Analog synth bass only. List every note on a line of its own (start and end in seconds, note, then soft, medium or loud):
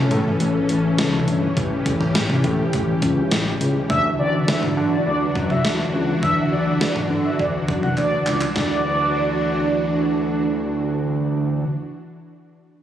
0.11 0.32 A2 loud
0.40 0.61 A1 loud
0.69 0.90 A1 medium
0.98 1.19 C#2 medium
1.28 1.48 G1 medium
1.57 1.77 A1 loud
1.86 2.06 A1 medium
2.15 2.35 A1 loud
2.44 2.65 A2 loud
2.73 2.94 A1 loud
3.02 3.23 C#2 medium
3.32 3.52 A1 medium
3.61 3.81 C#2 medium
3.90 4.10 D2 loud
4.19 4.39 D2 medium
4.48 4.68 D2 loud
4.77 4.98 D3 loud
5.06 5.27 D2 loud
5.36 5.56 F#2 medium
5.64 5.85 D2 medium
5.94 6.14 C#2 medium
6.23 6.43 D2 loud
6.52 6.72 D2 medium
6.81 7.01 D2 loud
7.10 7.31 D3 loud
7.39 7.60 D2 medium
7.68 7.89 F#2 medium
7.97 8.18 D2 medium
8.27 8.47 C#2 medium
8.56 11.65 D2 loud